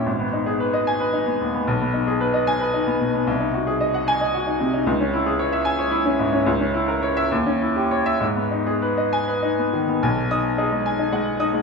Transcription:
0.06 G#1
0.19 B3
0.33 D#4
0.46 G#4
0.60 B4
0.74 D#5
0.87 G#5
1.00 B4
1.13 D#4
1.27 B3
1.41 D#2
1.54 B3
1.67 B1
1.81 B3
1.94 D#4
2.07 G#4
2.21 B4
2.34 D#5
2.47 G#5
2.60 B4
2.74 D#4
2.87 B3
3.00 B2
3.13 B3
3.27 C2
3.40 D#4
3.54 F#4
3.67 G#4
3.81 D#5
3.94 F#5
4.08 G#5
4.21 D#5
4.34 F#4
4.47 D#4
4.61 C3
4.74 D#4
4.86 C#2
5.00 C#4
5.13 E4
5.26 G#4
5.39 C#5
5.52 E5
5.65 G#5
5.79 C#5
5.91 E4
6.05 C#4
6.19 G#2
6.33 C#4
6.46 C#2
6.60 C#4
6.74 E4
6.88 A#4
7.02 C#5
7.17 E5
7.31 D#2
7.46 C#4
7.61 E4
7.76 G4
7.91 C#5
8.06 E5
8.21 G#2
8.36 B3
8.51 D#4
8.66 G#4
8.82 B4
8.97 D#5
9.13 G#5
9.28 B4
9.43 D#4
9.58 B3
9.73 D#3
9.89 B3
10.03 B1 G#5
10.31 D#4 D#6
10.58 D#4 G#4
10.72 G#3
10.86 G#5
10.99 D#4
11.12 G#3 F#5
11.40 D#4 D#6
11.54 G#3

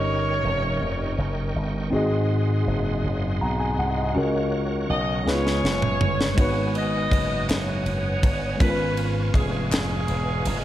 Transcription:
Already playing: G1 G2 C#4 D#4 G4 A#4 C#5 D#5 G5 C#6
0.44 F1
0.81 F1
1.18 F#1
1.56 G1
1.90 G#1 G#2 C4 D#4 F#4 G#4 F#5 C6
1.94 G#4 D#5
2.67 F#1
3.04 F#1
3.41 B1 A#5
3.60 G#5
3.78 C2 F#5
3.98 D#5
4.15 C#2 C#3 C#4 F#4 A#4 C#5 C#6
4.90 B1 D#5
5.25 C#2 C#3 G#3 B3 C#4 D#4 F4 G#4 B4 C#5 F5 G#5, snare
5.34 F4
5.47 snare
5.64 F#1, snare
5.82 mid tom
6.01 G1, floor tom
6.21 snare
6.35 G#1 G#2 G#3 B3 D#4 C#5 F#5 D#6, kick, ride
6.39 F#4 B4
6.75 F#4 B4 D#5, ride
7.11 F#1, kick, ride
7.49 F#1 F#4 C#5, snare, clap, ride
7.85 F#1, ride
8.23 G1, kick, ride
8.57 G#1 G#2 G#3 B3 C#4 B4 F5 C#6, kick, ride
8.62 F4 A#4
8.70 B4
8.97 ride
9.34 F1 G#4, kick, ride
9.71 F1 B3 F4 G#4, snare, clap, ride
10.08 E1, ride
10.45 F1, ride

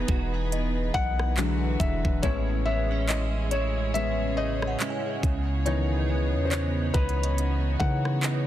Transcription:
Already playing: E3 F#3 G#3 B3 D#4 G#4 B4
0.08 E1 F#4, kick, closed hi-hat
0.33 G#4
0.52 D#5, closed hi-hat
0.94 B1 F#5, kick
1.20 cross-stick
1.37 D3 E3 F#3 G#3 F#4 B4, clap, closed hi-hat
1.80 E1 E5, kick, closed hi-hat
2.05 E1, kick
2.22 A1 A2 C#3 G#3 B3 C#4 E4 G#4 C#5, kick, closed hi-hat
2.65 B3 E5
2.91 C#4
3.08 G#3 C#4 E4 D#5, clap, closed hi-hat
3.51 E4 C#5, closed hi-hat
3.94 G#3 B3 C#4 E5, closed hi-hat
4.37 C#5 D#5
4.62 cross-stick
4.67 F#5
4.80 G#3 C#4 E4, clap, closed hi-hat
4.90 G#5
5.23 C#2 C#3 B3 C#4 G#4, kick, closed hi-hat
5.66 C#3 D#3 E3 B3 D#4 C#5, closed hi-hat
6.09 B3
6.34 E2
6.45 C5
6.51 E3 B3 D#4 C#5, clap, closed hi-hat
6.94 C#2 D#4 F#4 B4, kick, closed hi-hat
7.09 closed hi-hat
7.23 closed hi-hat
7.38 closed hi-hat
7.79 C#3 E3 B3 D#4 F#5, kick
8.05 cross-stick
8.23 E3 B3 D#4, clap, closed hi-hat

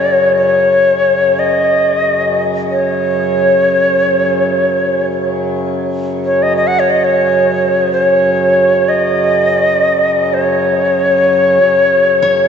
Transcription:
Already playing: F#2 C#3 C#5
0.37 C#5
1.39 D#5
2.71 C#5
6.25 C#5
6.42 D#5
6.57 D#5
6.67 F#5
6.79 C#5
6.90 D#5
7.04 C#5
7.92 C#5
8.89 D#5
10.34 C#5
11.60 F#2 C#3
12.22 C#5

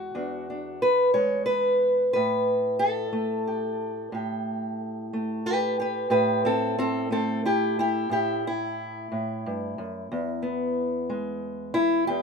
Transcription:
Already playing: E2 G#3 F#4
0.15 E2 D4
0.50 D4
0.82 B4
1.14 G#3 C#5
1.46 B4
2.13 A2 B4
2.79 A4
3.13 A3
3.47 G4
4.12 A2 G4
5.13 A3
5.46 G4 B4
5.80 G4 B4
6.10 A2 G4 B4
6.45 C4 A4
6.79 C4 A4
7.11 A3 C4 A4
7.45 E4 G4
7.79 E4 G4
8.09 A2 E4 G4
8.47 E4
9.12 A2
9.46 G2
9.78 F#2
10.12 E2
10.42 B3
11.10 G#3
11.74 E4
12.07 E2 G4

